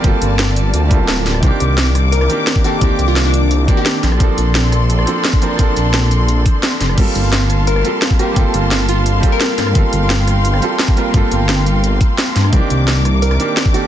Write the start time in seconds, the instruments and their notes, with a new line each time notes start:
Already playing: grand piano A#3 C4 F4 A4 A#4, string section A#3 F4 D5 A5
0.00 grand piano G3 A#3
0.04 detuned saw bass G1, grand piano C4 F4 A4, kick, closed hi-hat
0.21 detuned saw bass G1, closed hi-hat
0.39 snare, closed hi-hat
0.56 closed hi-hat
0.74 detuned saw bass D2, closed hi-hat
0.88 grand piano G3 A#3 C4, kick, closed hi-hat
0.93 grand piano F4 A4
1.00 detuned saw bass D1
1.08 snare, closed hi-hat
1.26 snare, closed hi-hat
1.34 cross-stick
1.40 detuned saw bass C2, grand piano D#3 A#3 C4, string section D6, kick, closed hi-hat
1.44 grand piano D4 G4
1.60 detuned saw bass C2, closed hi-hat
1.78 snare, closed hi-hat
1.95 cross-stick, closed hi-hat
2.12 synth pluck A#4, closed hi-hat
2.21 synth pluck A#4, cross-stick
2.28 grand piano D#3 A#3 C4 D4 G4, closed hi-hat
2.47 snare, closed hi-hat
2.56 kick
2.63 grand piano D#3 A#3 C4 D4 A4, synth pluck G4, closed hi-hat
2.79 detuned saw bass C2, grand piano D#3 A#3 C4, kick, closed hi-hat
2.83 grand piano D4 G4
2.99 detuned saw bass C2, closed hi-hat
3.08 synth pluck F4
3.16 snare, closed hi-hat
3.25 synth pluck D4
3.34 closed hi-hat
3.51 closed hi-hat
3.67 grand piano D#3 A#3 C4 D4 G4, kick, closed hi-hat
3.77 synth pluck G4
3.86 snare, closed hi-hat
4.03 detuned saw bass A#1, string section A4 D5 C6, snare, closed hi-hat
4.12 cross-stick
4.17 detuned saw bass A#1, grand piano F3 A#3 C4, kick, closed hi-hat
4.22 grand piano D4 A4
4.38 detuned saw bass A#1, closed hi-hat
4.55 snare, closed hi-hat
4.72 cross-stick, closed hi-hat
4.90 closed hi-hat
4.99 cross-stick
5.05 grand piano F3 A#3 C4 D4 A4, closed hi-hat
5.24 snare, closed hi-hat
5.33 kick
5.41 grand piano F3 A#3 C4 D4 A#4, closed hi-hat
5.56 detuned saw bass A#1, grand piano F3 A#3 C4, kick, closed hi-hat
5.61 grand piano D4 A4
5.76 detuned saw bass A#1, closed hi-hat
5.94 snare, closed hi-hat
6.11 closed hi-hat
6.29 closed hi-hat
6.46 kick, closed hi-hat
6.63 snare, closed hi-hat
6.81 detuned saw bass F1, snare, closed hi-hat
6.89 cross-stick
6.95 detuned saw bass G1, grand piano G3 A#3 C4, string section A#3 F5 A5 C6, kick, closed hi-hat, crash
6.99 grand piano F4 A4
7.15 detuned saw bass G1, closed hi-hat
7.33 snare, closed hi-hat
7.50 cross-stick, closed hi-hat
7.67 synth pluck A#4, closed hi-hat
7.76 synth pluck A#4, cross-stick
7.83 grand piano G3 A#3 C4 F4 A4, closed hi-hat
8.02 snare, closed hi-hat
8.10 kick
8.17 grand piano G3 A#3 C4 F4 A#4, synth pluck G4, closed hi-hat
8.33 detuned saw bass G1, grand piano G3 A#3 C4, kick, closed hi-hat
8.38 grand piano F4 A4
8.54 detuned saw bass G1, closed hi-hat
8.71 snare, closed hi-hat
8.89 synth pluck F4, closed hi-hat
9.06 closed hi-hat
9.20 grand piano G3 A#3 C4, kick, closed hi-hat
9.24 grand piano F4 A4
9.32 synth pluck A#4
9.40 snare, closed hi-hat
9.58 detuned saw bass G2, snare, closed hi-hat
9.67 cross-stick
9.72 detuned saw bass G1, grand piano G3 A#3 C4, string section G5, kick, closed hi-hat
9.77 grand piano F4 A4
9.93 detuned saw bass G1, closed hi-hat
10.10 snare, closed hi-hat
10.28 cross-stick, closed hi-hat
10.45 closed hi-hat
10.54 cross-stick
10.61 grand piano G3 A#3 C4 F4 A4, closed hi-hat
10.79 snare, closed hi-hat
10.88 kick
10.95 grand piano G3 A#3 C4 F4 A#4, closed hi-hat
11.11 detuned saw bass G1, grand piano G3 A#3 C4, kick, closed hi-hat
11.16 grand piano F4 A4
11.31 detuned saw bass G1, closed hi-hat
11.49 snare, closed hi-hat
11.66 closed hi-hat
11.84 closed hi-hat
12.01 kick, closed hi-hat
12.18 snare, closed hi-hat
12.36 detuned saw bass G2, snare, closed hi-hat
12.44 cross-stick
12.50 detuned saw bass C2, grand piano D#3 A#3 C4, string section D6, kick, closed hi-hat
12.54 grand piano D4 G4
12.70 detuned saw bass C2, closed hi-hat
12.88 snare, closed hi-hat
13.05 cross-stick, closed hi-hat
13.22 synth pluck A#4, closed hi-hat
13.31 synth pluck A#4, cross-stick
13.38 grand piano D#3 A#3 C4 D4 G4, closed hi-hat
13.57 snare, closed hi-hat
13.65 kick
13.73 grand piano D#3 A#3 C4 D4 A4, synth pluck G4, closed hi-hat